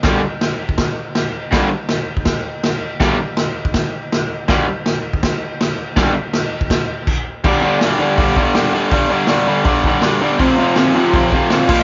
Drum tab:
CC |x---x---x---x---|x---x---x---x---|x---x---x---x---|x---x---x---x---|
HH |----------------|----------------|----------------|----------------|
SD |o---o---o---o---|o---o---o---o---|o---o---o---o---|o---o---o---o---|
BD |o------oo-------|o------oo-------|o------oo-------|o------oo-------|

CC |x---x---x---x---|x---------------|----------------|--------------x-|
HH |----------------|----o---o---o---|o---o---o---o---|o---o---o---o---|
SD |o---o---o-------|----o-------o---|----o-------o---|----o-------o---|
BD |o------oo---o---|o-------o-o-----|o-------o-o-----|o-------o-o---o-|